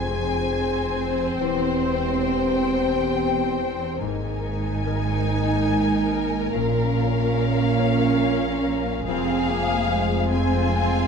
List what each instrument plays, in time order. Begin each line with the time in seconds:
Already playing: double bass section F1, cello section F2, harp F2 C4 C5 F5, viola section C4, french horn section C4 G#4, violin section C5 G#5
0.11 harp G#4
0.54 harp G#5
0.97 harp C5
1.39 double bass section E1, cello section E2, harp E2, french horn section G4, violin section G5
1.84 harp C4
2.28 harp C5
2.73 harp G4
3.16 harp G5
3.59 harp C5
3.99 double bass section G#1, cello section G#2, harp G#2, french horn section A#3 D#4, viola section D#4, violin section A#4 G#5
4.44 harp D#4
4.87 harp A#4
5.29 harp D#5
5.71 harp G#5
6.13 harp A#4
6.55 double bass section A#1, harp A#2, cello section A#2, viola section C#4, french horn section C#4, violin section F5
6.97 harp C#4
7.38 harp A#4
7.79 harp C#5
8.22 harp F5
8.64 harp A#4
9.07 double bass section F1, cello section F2, harp F2, french horn section G#3 C4, viola section C4, violin section G#4 F5
9.48 viola section A#3, harp C4
9.92 viola section G#3, harp C5
10.32 viola section C4, violin section F4 G#5, harp G#4
10.76 harp G#5